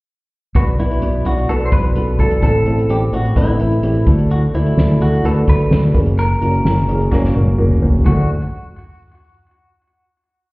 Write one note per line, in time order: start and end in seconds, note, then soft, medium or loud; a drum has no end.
0.55 0.74 B1 medium
0.55 0.72 B3 medium
0.55 0.72 D4 medium
0.55 0.72 F#4 medium
0.55 0.62 F#4 medium
0.55 0.72 B4 medium
0.55 kick medium
0.55 closed hi-hat medium
0.79 0.98 B1 medium
0.79 0.95 B3 medium
0.79 0.95 D4 medium
0.79 1.26 E4 medium
0.79 0.95 F#4 medium
0.79 0.95 B4 medium
0.79 closed hi-hat medium
0.91 closed hi-hat soft
1.02 1.21 B1 medium
1.02 1.19 B3 medium
1.02 1.19 D4 medium
1.02 1.19 F#4 medium
1.02 1.19 D5 medium
1.02 closed hi-hat medium
1.25 1.44 B1 medium
1.25 1.42 B3 medium
1.25 1.42 D4 medium
1.25 1.42 F#4 medium
1.25 1.50 F#4 medium
1.25 1.42 D5 medium
1.25 closed hi-hat medium
1.38 closed hi-hat soft
1.48 1.68 B1 medium
1.48 1.66 B3 medium
1.48 1.66 D4 medium
1.48 1.66 F#4 medium
1.48 1.65 A4 medium
1.48 1.66 B4 medium
1.48 closed hi-hat medium
1.60 closed hi-hat soft
1.65 1.72 C5 medium
1.72 1.91 B1 medium
1.72 1.89 B3 medium
1.72 1.89 D4 medium
1.72 2.19 B4 medium
1.72 kick medium
1.72 closed hi-hat medium
1.84 closed hi-hat soft
1.96 2.15 B1 medium
1.96 2.12 B3 medium
1.96 2.12 D4 medium
1.96 2.13 F#4 medium
1.96 2.12 A4 medium
1.96 closed hi-hat medium
2.19 2.38 B1 medium
2.19 2.36 B3 medium
2.19 2.36 D4 medium
2.19 2.36 F#4 soft
2.19 2.36 A4 medium
2.19 2.42 A4 medium
2.19 kick medium
2.19 closed hi-hat medium
2.31 closed hi-hat soft
2.42 2.62 A1 loud
2.42 2.59 A3 medium
2.42 2.59 C4 medium
2.42 2.59 E4 medium
2.42 2.59 A4 medium
2.42 2.91 A4 medium
2.42 kick medium
2.42 closed hi-hat medium
2.66 2.85 A1 medium
2.66 2.83 A3 medium
2.66 2.83 C4 medium
2.66 2.83 E4 medium
2.66 2.83 A4 medium
2.66 closed hi-hat medium
2.78 closed hi-hat soft
2.89 3.09 A1 medium
2.89 3.06 A3 medium
2.89 3.06 C4 medium
2.89 3.06 E4 soft
2.89 3.06 G4 medium
2.89 2.97 G4 medium
2.89 closed hi-hat medium
3.13 3.32 A1 medium
3.13 3.30 A3 medium
3.13 3.30 C4 medium
3.13 3.30 E4 soft
3.13 3.37 F#4 medium
3.13 3.30 A4 medium
3.13 closed hi-hat medium
3.25 closed hi-hat soft
3.36 3.56 A1 medium
3.36 3.53 A3 medium
3.36 3.53 C4 medium
3.36 3.53 E4 medium
3.36 4.03 E4 medium
3.36 3.53 B4 medium
3.36 kick medium
3.36 closed hi-hat medium
3.48 closed hi-hat soft
3.60 3.79 A1 medium
3.60 3.77 A3 medium
3.60 3.77 C4 medium
3.60 3.77 E4 medium
3.60 3.77 B4 medium
3.60 closed hi-hat medium
3.72 closed hi-hat soft
3.83 4.02 A1 medium
3.83 4.00 A3 medium
3.83 4.00 C4 medium
3.83 4.00 E4 medium
3.83 4.00 G4 medium
3.83 closed hi-hat medium
3.95 closed hi-hat soft
4.07 4.45 D2 medium
4.07 4.73 A2 medium
4.07 4.44 A3 medium
4.07 4.44 D4 medium
4.07 4.44 F#4 medium
4.07 4.44 A4 medium
4.07 kick medium
4.07 closed hi-hat medium
4.18 closed hi-hat soft
4.31 4.38 F#4 medium
4.31 closed hi-hat medium
4.53 4.73 D2 medium
4.53 4.71 A3 medium
4.53 4.70 D4 medium
4.53 5.01 E4 medium
4.53 4.71 F#4 medium
4.53 4.71 C5 medium
4.53 closed hi-hat medium
4.66 closed hi-hat soft
4.77 4.96 D2 medium
4.77 4.94 A3 medium
4.77 4.94 D4 medium
4.77 4.94 F#4 medium
4.77 4.94 C5 medium
4.77 snare medium
5.00 5.20 D2 medium
5.00 5.17 A3 medium
5.00 5.17 D4 medium
5.00 5.17 F#4 medium
5.00 5.25 F#4 medium
5.00 5.17 A4 medium
5.00 closed hi-hat medium
5.13 closed hi-hat soft
5.24 5.43 D2 loud
5.24 5.41 A3 medium
5.24 5.41 D4 medium
5.24 5.41 F#4 medium
5.24 5.32 A4 medium
5.24 5.41 B4 medium
5.24 closed hi-hat medium
5.47 5.67 D2 medium
5.47 5.64 A3 medium
5.47 5.64 D4 soft
5.47 5.64 F#4 medium
5.47 5.64 A4 medium
5.47 5.92 B4 medium
5.47 kick medium
5.47 closed hi-hat medium
5.60 closed hi-hat soft
5.71 5.90 D2 medium
5.71 5.87 A3 medium
5.71 5.87 D4 medium
5.71 5.88 F#4 medium
5.71 5.88 C5 medium
5.71 snare loud
5.94 6.33 F#1 medium
5.94 6.61 C#3 soft
5.94 6.32 A#3 medium
5.94 6.32 C#4 medium
5.94 6.32 F#4 medium
5.94 6.32 A#4 medium
5.94 kick medium
5.94 closed hi-hat medium
6.06 closed hi-hat soft
6.18 7.55 A#4 medium
6.18 closed hi-hat medium
6.41 6.60 F#1 medium
6.41 6.58 A#3 medium
6.41 6.58 C#4 medium
6.41 6.58 F#4 medium
6.41 6.58 A#4 medium
6.41 closed hi-hat medium
6.54 closed hi-hat soft
6.65 6.84 F#1 medium
6.65 6.81 A#3 medium
6.65 6.81 C#4 medium
6.65 6.82 F#4 medium
6.65 6.82 A#4 medium
6.65 snare medium
6.88 7.07 F#1 medium
6.88 7.05 A#3 medium
6.88 7.05 C#4 medium
6.88 7.05 F#4 medium
6.88 7.05 G#4 medium
6.88 closed hi-hat medium
7.01 closed hi-hat soft
7.11 7.31 F#1 medium
7.11 7.28 A#3 loud
7.11 7.28 C#4 loud
7.11 7.28 F#4 medium
7.11 7.28 A#4 loud
7.11 kick medium
7.11 snare soft
7.24 snare soft
7.34 7.54 F#1 medium
7.34 7.51 A#3 medium
7.34 7.51 C#4 medium
7.34 7.52 F#4 medium
7.34 7.51 A#4 medium
7.34 high tom medium
7.47 high tom soft
7.58 7.78 F#1 medium
7.58 7.75 A#3 medium
7.58 7.75 C#4 medium
7.58 7.75 F#4 medium
7.58 7.75 A#4 medium
7.58 mid tom medium
7.71 mid tom medium
7.82 8.01 F#1 medium
7.82 7.98 A#3 medium
7.82 7.99 C#4 medium
7.82 7.99 F#4 medium
7.82 7.99 C5 medium
7.82 floor tom medium
7.94 floor tom medium
8.05 8.27 D2 medium
8.05 8.27 A3 medium
8.05 8.27 D4 medium
8.05 8.27 F#4 medium
8.05 8.28 F#4 medium
8.05 8.27 A4 medium
8.05 kick medium
8.05 crash medium